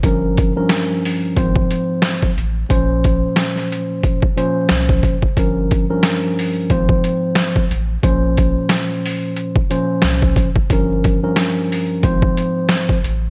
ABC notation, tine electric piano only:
X:1
M:4/4
L:1/16
Q:"Swing 16ths" 1/4=90
K:Bbdor
V:1 name="Tine electric piano" clef=bass
[G,,F,DB]3 [G,,F,DB]4- [G,,F,DB] [A,,F,Cc]6 z2 | [B,,F,Dc]8- [B,,F,Dc] z [B,,F,Dc]4- [B,,F,Dc] z | [G,,F,DB]3 [G,,F,DB]4- [G,,F,DB] [A,,F,Cc]6 z2 | [B,,F,Dc]8- [B,,F,Dc] z [B,,F,Dc]4- [B,,F,Dc] z |
[G,,F,DB]3 [G,,F,DB]4- [G,,F,DB] [A,,F,Cc]6 z2 |]